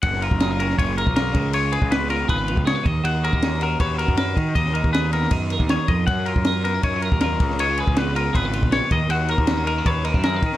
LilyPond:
<<
  \new Staff \with { instrumentName = "Clean electric guitar" } { \time 4/4 \key fis \major \tempo 4 = 158 fis''8 ais'4 ais'8 cis''8 ais'8 ais'4 | cis''8 gis'8 b'8 ais'8 b'4 cis''8 dis''8 | fis''8 ais'4 ais'8 cis''8 ais'8 ais'4 | dis''8 ais'8 b'8 ais'8 r4 cis''8 dis''8 |
fis''8 ais'4 ais'8 cis''8 ais'8 ais'4 | cis''8 gis'8 b'8 ais'8 b'4 cis''8 dis''8 | fis''8 ais'4 ais'8 cis''8 ais'8 ais'4 | }
  \new Staff \with { instrumentName = "Clean electric guitar" } { \time 4/4 \key fis \major << { r8 eis'8 gis'16 ais'16 cis'8 eis'8 ais'8 eis'8 r8 | eis'8 b'8 b8 eis'8 gis'16 b'16 eis'8 gis'16 b'16 r8 | fis'8 gis'16 ais'16 cis'8 fis'8 b'8 fis'8 b'8 r8 | r8 dis'8 gis'8 b8 dis'8 ais'4. |
r8 eis'8 ais'8 b16 cis'16 dis'16 eis'16 ais'8 eis'8 r8 | dis'16 eis'16 b'8 b8 eis'8 gis'16 b'16 eis'8 b'8 r8 | fis'8 ais'8 b16 cis'16 dis'16 fis'16 b'8 dis'16 fis'16 gis'16 b'16 r8 | } \\ { fis,2.~ fis,8 cis8~ | cis2.~ cis8 dis8~ | dis2.~ dis8 dis8 | dis2. dis8 eis8 |
fis,2.~ fis,8 cis8~ | cis2.~ cis8 dis8~ | dis2.~ dis8 dis8 | } >> }
  \new Staff \with { instrumentName = "Picked electric bass" } { \clef bass \time 4/4 \key fis \major fis,,8. fis,,4~ fis,,16 fis,,8. b,,8. cis,8~ | cis,8. cis,4~ cis,16 gis,,8. cis,8 r16 dis,8 | dis,8. dis,4~ dis,16 dis,8. fis,8. dis8 | dis,8. dis,4~ dis,16 fis,8. dis,8 r16 eis,8 |
fis,8. fis,4~ fis,16 fis,8. dis,8. cis,8~ | cis,8. cis,4~ cis,16 gis,,8. ais,,8 r16 dis,8 | dis,8. dis,4~ dis,16 dis,8. fis,8. dis8 | }
  \new DrumStaff \with { instrumentName = "Drums" } \drummode { \time 4/4 <bd cymr>16 sn16 cymr16 bd16 <cymr sn>8 cymr16 sn16 <bd cymr>8 cymr16 bd16 <cymr sn>8 <bd cymr>8 | cymr8 cymr16 bd16 <cymr sn>8 cymr8 <bd cymr>8 cymr16 bd16 <cymr sn>8 <bd cymr>8 | cymr8 cymr16 bd16 <cymr sn>8 cymr8 <bd cymr>8 cymr16 bd16 <cymr sn>8 <bd cymr>8 | <bd cymr>16 sn16 cymr16 bd16 <cymr sn>8 cymr16 sn16 <bd cymr>8 cymr16 bd16 <cymr sn>8 <bd cymr>8 |
<bd cymr>8 cymr16 bd16 <cymr sn>8 cymr8 <bd cymr>8 cymr16 bd16 <cymr sn>8 <bd cymr>16 sn16 | cymr8 cymr16 bd16 <cymr sn>8 cymr8 <bd cymr>8 cymr16 bd16 <cymr sn>8 <bd cymr>8 | cymr8 cymr16 bd16 <cymr sn>8 cymr8 <bd cymr>8 cymr16 bd16 <cymr sn>8 <bd cymr>16 sn16 | }
>>